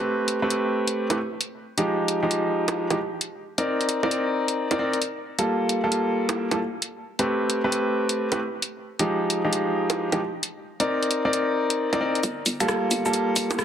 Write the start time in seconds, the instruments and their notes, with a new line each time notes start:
Already playing: grand piano A3 C4 G4 B4
0.28 closed hi-hat
0.42 grand piano A3 C4 G4 B4
0.50 closed hi-hat
0.88 closed hi-hat
1.10 grand piano A3 C4 G4 B4, closed hi-hat, high bongo
1.41 closed hi-hat
1.78 grand piano F3 G#3 D#4 G4, closed hi-hat
2.08 closed hi-hat
2.23 grand piano F3 G#3 D#4 G4
2.31 closed hi-hat
2.68 closed hi-hat, high bongo
2.90 grand piano F3 G#3 D#4 G4, closed hi-hat, high bongo
3.21 closed hi-hat
3.58 grand piano C4 D#4 A#4 D5, closed hi-hat
3.81 closed hi-hat
3.89 closed hi-hat
4.03 grand piano C4 D#4 A#4 D5, high bongo
4.11 closed hi-hat
4.48 closed hi-hat
4.71 grand piano C4 D#4 A#4 D5, closed hi-hat, high bongo
4.79 grand piano C4 D#4 A#4 D5
4.93 closed hi-hat
5.02 closed hi-hat
5.39 grand piano G3 A#3 F4 A4, closed hi-hat
5.69 closed hi-hat
5.84 grand piano G3 A#3 F4 A4
5.92 closed hi-hat
6.29 closed hi-hat, high bongo
6.51 grand piano G3 A#3 F4 A4, closed hi-hat, high bongo
6.82 closed hi-hat
7.19 grand piano A3 C4 G4 B4, closed hi-hat
7.50 closed hi-hat
7.64 grand piano A3 C4 G4 B4
7.72 closed hi-hat
8.09 closed hi-hat
8.32 grand piano A3 C4 G4 B4, closed hi-hat, high bongo
8.62 closed hi-hat
8.99 grand piano F3 G#3 D#4 G4, closed hi-hat
9.30 closed hi-hat
9.44 grand piano F3 G#3 D#4 G4
9.53 closed hi-hat
9.90 closed hi-hat, high bongo
10.12 grand piano F3 G#3 D#4 G4, closed hi-hat, high bongo
10.43 closed hi-hat
10.80 grand piano C4 D#4 A#4 D5, closed hi-hat
11.03 closed hi-hat
11.11 closed hi-hat
11.25 grand piano C4 D#4 A#4 D5
11.33 closed hi-hat
11.70 closed hi-hat
11.93 grand piano C4 D#4 A#4 D5, closed hi-hat, high bongo
12.01 grand piano C4 D#4 A#4 D5
12.15 closed hi-hat
12.23 fm bass G1, kick, closed hi-hat, cabasa
12.46 fm bass G1, open hi-hat, cabasa
12.60 grand piano G3 A#3 F4 A4, finger snap, closed hi-hat, cabasa
12.68 cross-stick, cabasa
12.91 fm bass G1, open hi-hat, cabasa
13.05 grand piano G3 A#3 F4 A4, cabasa
13.13 closed hi-hat, cabasa
13.36 kick, open hi-hat, cabasa
13.51 fm bass G1, closed hi-hat, high bongo, cabasa
13.59 cross-stick, cabasa